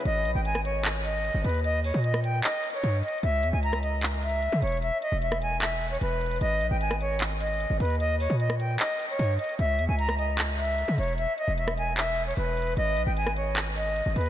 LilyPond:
<<
  \new Staff \with { instrumentName = "Flute" } { \time 4/4 \key gis \minor \tempo 4 = 151 dis''8. g''16 gis''8 cis''8 r8 dis''4 b'8 | dis''8 cis''8 dis''8 g''8 dis''8. cis''8. dis''8 | e''8. gis''16 ais''8 dis''8 r8 e''4 cis''8 | e''8 dis''8 e''8 gis''8 e''8. cis''16 b'4 |
dis''8. g''16 gis''8 cis''8 r8 dis''4 b'8 | dis''8 cis''8 dis''8 g''8 dis''8. cis''8. dis''8 | e''8. gis''16 ais''8 dis''8 r8 e''4 cis''8 | e''8 dis''8 e''8 gis''8 e''8. cis''16 b'4 |
dis''8. g''16 gis''8 cis''8 r8 dis''4 b'8 | }
  \new Staff \with { instrumentName = "808-style bass" } { \clef bass \time 4/4 \key gis \minor gis,,8 ais,,16 gis,,2~ gis,,8 g,,16 dis,8~ | dis,8. ais,4~ ais,16 r4 g,8 r8 | cis,8 e,16 cis,2~ cis,8 cis16 e,,8~ | e,,16 r8 e,,2~ e,,16 e,,4 |
gis,,8 ais,,16 gis,,2~ gis,,8 g,,16 dis,8~ | dis,8. ais,4~ ais,16 r4 g,8 r8 | cis,8 e,16 cis,2~ cis,8 cis16 e,,8~ | e,,16 r8 e,,2~ e,,16 e,,4 |
gis,,8 ais,,16 gis,,2~ gis,,8 g,,16 dis,8 | }
  \new DrumStaff \with { instrumentName = "Drums" } \drummode { \time 4/4 hh8 hh8 hh16 ss16 hh8 \tuplet 3/2 { <hc hh>16 r16 r16 hh16 hh16 hh16 } hh8 hh32 hh32 hh32 hh32 | hh8 hho8 hh16 ss16 hh8 \tuplet 3/2 { <hc hh>16 r16 r16 hh16 hh16 hh16 } hh8 hh32 hh32 hh32 hh32 | hh8 hh8 hh16 ss16 hh8 \tuplet 3/2 { <hc hh>16 r16 r16 hh16 hh16 hh16 } hh8 hh32 hh32 hh32 hh32 | hh8 hh8 hh16 ss16 hh8 \tuplet 3/2 { <hc hh>16 r16 r16 hh16 hh16 hh16 } hh8 hh32 hh32 hh32 hh32 |
hh8 hh8 hh16 ss16 hh8 \tuplet 3/2 { <hc hh>16 r16 r16 hh16 hh16 hh16 } hh8 hh32 hh32 hh32 hh32 | hh8 hho8 hh16 ss16 hh8 \tuplet 3/2 { <hc hh>16 r16 r16 hh16 hh16 hh16 } hh8 hh32 hh32 hh32 hh32 | hh8 hh8 hh16 ss16 hh8 \tuplet 3/2 { <hc hh>16 r16 r16 hh16 hh16 hh16 } hh8 hh32 hh32 hh32 hh32 | hh8 hh8 hh16 ss16 hh8 \tuplet 3/2 { <hc hh>16 r16 r16 hh16 hh16 hh16 } hh8 hh32 hh32 hh32 hh32 |
hh8 hh8 hh16 ss16 hh8 \tuplet 3/2 { <hc hh>16 r16 r16 hh16 hh16 hh16 } hh8 hh32 hh32 hh16 | }
>>